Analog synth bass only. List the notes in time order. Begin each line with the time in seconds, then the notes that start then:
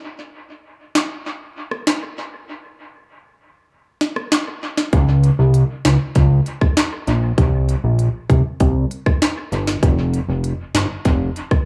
4.93 C#2
5.39 C2
5.85 C#2
6.16 C#2
7.07 A#1
7.38 C2
7.84 A#1
8.30 C2
8.60 C2
9.52 G1
9.83 F1
10.28 F1
10.74 G1
11.05 F1